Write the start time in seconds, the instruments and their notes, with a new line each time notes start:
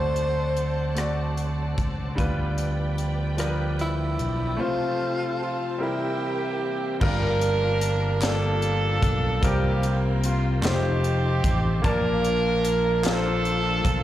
Already playing: fingered electric bass D2, grand piano D3 A3 D4 F#4 C5, tonewheel organ F#3 C4 D4 A4, tenor saxophone C5, string section C5 D5 F#5 A5
0.16 closed hi-hat
0.57 closed hi-hat
0.95 grand piano A3 D4 F#4 D5, cross-stick, closed hi-hat
1.37 closed hi-hat
1.78 fingered electric bass C#2, kick, closed hi-hat
2.15 fingered electric bass D2, grand piano D3 G3 D4 F4 B4, tonewheel organ F3 B3 D4 G4, kick, closed hi-hat
2.19 string section B4 G5
2.58 closed hi-hat
2.98 closed hi-hat
3.36 grand piano F3 G3 D4 A#4, cross-stick, closed hi-hat
3.46 grand piano B4
3.79 tenor saxophone E4, closed hi-hat
4.19 fingered electric bass B1, closed hi-hat
4.57 grand piano C3 A3 C4 F4 C5, tonewheel organ C3 F3 A3 C4 A4, string section C4 A4 C5 A5
4.62 tenor saxophone F4
5.41 horn section F4, tenor saxophone F4
5.78 grand piano C3 G3 C4 E4 A#4, tonewheel organ E3 A#3 C4 F4, horn section G4, string section A#4 E5 G5
5.82 horn section A#3 E4, tenor saxophone E4, tonewheel organ G4
7.00 fingered electric bass G1, grand piano G2 G3 D4 F4 A#4, tonewheel organ F3 A#3 D4 F#4, horn section D4 F4 A#4, kick, crash
7.08 tonewheel organ G4
7.41 closed hi-hat
7.81 closed hi-hat
8.20 grand piano G3 A#3 D4 F4, horn section D4 F4 A4, snare, clap, closed hi-hat
8.62 closed hi-hat
9.02 fingered electric bass B1, kick, closed hi-hat
9.41 fingered electric bass C2, grand piano C3 G3 C4 F4 A#4, tonewheel organ F3 A#3 C4 F#4, horn section A#3 G4, kick, closed hi-hat
9.48 tonewheel organ G4
9.83 closed hi-hat
10.24 horn section F4, closed hi-hat
10.61 fingered electric bass F1, tonewheel organ F3 C4 D#4 A4, grand piano A3 D#4 F4 C5, horn section C4 D#4 G4, snare, clap, closed hi-hat
11.04 closed hi-hat
11.44 fingered electric bass A1, kick, closed hi-hat
11.82 fingered electric bass A#1, grand piano A#2 A#3 F4 D5 A5, tonewheel organ F3 D4, horn section D4 F4 A#4, kick, closed hi-hat
11.86 tonewheel organ A#3 G#4
11.93 tonewheel organ F4
12.24 closed hi-hat
12.65 closed hi-hat
13.03 grand piano A#3 F4 A4 A#4, horn section D4 F4 A4, snare, clap, closed hi-hat
13.12 grand piano C5
13.45 closed hi-hat
13.85 fingered electric bass B1, kick, closed hi-hat